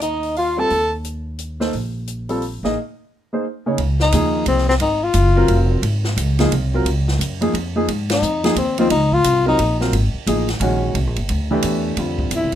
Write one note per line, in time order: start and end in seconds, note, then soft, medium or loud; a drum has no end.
0.00 0.66 D#2 medium
0.00 0.34 D#4 medium
0.00 0.35 D#5 medium
0.00 closed hi-hat soft
0.23 open hi-hat soft
0.36 0.61 F4 medium
0.36 0.61 F5 medium
0.36 open hi-hat soft
0.57 0.69 G3 medium
0.57 0.69 C4 medium
0.57 0.69 F4 soft
0.57 0.70 A4 medium
0.57 0.93 A4 medium
0.57 0.93 A5 medium
0.70 1.70 D#2 medium
0.70 open hi-hat soft
1.05 closed hi-hat soft
1.39 closed hi-hat soft
1.60 1.72 A#3 medium
1.60 1.72 D#4 soft
1.60 1.73 A4 soft
1.60 1.72 C5 medium
1.60 snare soft
1.73 2.60 A#1 medium
1.73 open hi-hat soft
2.07 closed hi-hat soft
2.29 2.41 G3 medium
2.29 2.41 C4 medium
2.29 2.41 F4 medium
2.29 2.41 A4 medium
2.29 open hi-hat soft
2.42 open hi-hat soft
2.63 2.75 A1 medium
2.63 2.76 A#3 medium
2.63 2.75 D#4 medium
2.63 2.76 G#4 medium
2.63 2.76 D#5 medium
2.63 snare soft
3.33 3.44 A#3 medium
3.33 3.44 D#4 soft
3.33 3.44 G#4 soft
3.33 3.44 C5 medium
3.66 3.78 C#3 medium
3.66 3.78 A#3 soft
3.66 3.78 D#4 medium
3.66 3.78 G#4 medium
3.66 3.78 C#5 medium
3.78 4.12 C#2 medium
3.78 ride medium
4.00 4.45 D#4 medium
4.00 snare medium
4.12 4.46 D#2 medium
4.12 4.64 F3 medium
4.12 4.64 A#3 medium
4.12 4.65 D#4 medium
4.12 4.65 G#4 medium
4.12 hi-hat pedal medium
4.12 ride medium
4.46 4.80 C2 medium
4.46 4.68 C4 medium
4.46 ride medium
4.58 snare soft
4.69 4.75 C4 medium
4.69 snare soft
4.80 5.13 G#1 medium
4.80 5.05 D#4 medium
4.80 ride medium
5.04 5.71 F4 medium
5.14 5.48 F#1 medium
5.14 hi-hat pedal medium
5.14 ride medium
5.36 5.81 F#3 medium
5.36 5.81 C4 medium
5.36 5.81 F4 medium
5.36 5.81 A#4 medium
5.48 5.82 F1 medium
5.48 ride medium
5.82 6.16 G#1 medium
5.82 ride medium
6.04 snare medium
6.17 6.50 C#2 medium
6.17 hi-hat pedal medium
6.17 ride medium
6.39 6.51 F3 medium
6.39 6.51 A#3 medium
6.39 6.51 D#4 medium
6.39 6.51 G#4 medium
6.39 snare medium
6.39 ride soft
6.51 6.84 C2 medium
6.51 ride medium
6.74 6.85 F#3 medium
6.74 6.85 C4 medium
6.74 6.86 F4 medium
6.74 6.86 A#4 medium
6.85 7.18 C#2 medium
6.85 ride medium
7.08 snare medium
7.19 7.53 F#2 medium
7.19 hi-hat pedal medium
7.19 ride medium
7.41 7.53 F3 medium
7.41 7.53 A#3 medium
7.41 7.53 D#4 medium
7.41 7.53 G#4 medium
7.41 ride soft
7.54 7.87 F2 medium
7.54 ride medium
7.76 7.87 F3 medium
7.76 7.87 A#3 medium
7.76 7.87 D#4 medium
7.76 7.88 G#4 medium
7.88 8.21 G#2 medium
7.88 ride medium
8.10 8.55 D#4 medium
8.10 snare medium
8.10 ride medium
8.22 8.55 F2 medium
8.22 hi-hat pedal medium
8.44 8.55 F3 medium
8.44 8.56 A#3 medium
8.44 8.56 D#4 medium
8.44 8.56 G#4 medium
8.44 snare medium
8.44 ride soft
8.56 8.89 D#2 medium
8.56 8.77 C4 medium
8.56 ride medium
8.78 8.90 F3 medium
8.78 8.90 A#3 medium
8.78 8.90 C4 medium
8.78 8.90 D#4 medium
8.78 8.90 F4 medium
8.78 ride soft
8.90 9.24 C#2 medium
8.90 9.15 D#4 medium
8.90 ride medium
9.12 9.47 F4 loud
9.12 kick medium
9.24 9.58 C2 medium
9.24 hi-hat pedal medium
9.24 ride medium
9.45 9.57 F#3 medium
9.45 9.57 C4 medium
9.45 9.79 D#4 medium
9.45 9.58 F4 medium
9.45 9.58 A#4 medium
9.59 9.92 A#1 medium
9.59 ride medium
9.80 9.92 F#3 medium
9.80 9.92 C4 medium
9.80 9.92 F4 medium
9.80 9.92 A#4 medium
9.80 snare soft
9.93 10.13 G#1 medium
9.93 ride medium
10.14 muted upright bass stroke soft
10.27 10.59 A1 medium
10.27 10.46 F3 medium
10.27 10.46 A#3 medium
10.27 10.47 D#4 medium
10.27 10.47 G#4 medium
10.27 hi-hat pedal medium
10.27 ride medium
10.49 snare soft
10.49 ride soft
10.60 10.93 A#1 medium
10.60 10.95 D#3 medium
10.60 10.95 G#3 medium
10.60 10.95 C#4 medium
10.60 10.96 F#4 medium
10.60 ride medium
10.95 11.07 C2 medium
10.95 ride medium
11.07 11.17 A#1 medium
11.16 11.29 G1 medium
11.16 ride soft
11.29 11.63 D2 medium
11.29 ride medium
11.51 11.95 E3 medium
11.51 11.95 A3 medium
11.51 11.95 D4 medium
11.51 11.96 G4 medium
11.62 11.96 E2 medium
11.62 hi-hat pedal medium
11.62 ride medium
11.97 12.30 F2 medium
11.97 12.55 D3 soft
11.97 12.55 G3 soft
11.97 12.55 C4 soft
11.97 12.55 F4 medium
11.97 ride medium
12.19 kick medium
12.31 12.44 E2 medium
12.31 hi-hat pedal medium
12.31 ride medium
12.36 12.54 E4 medium
12.43 12.54 C2 medium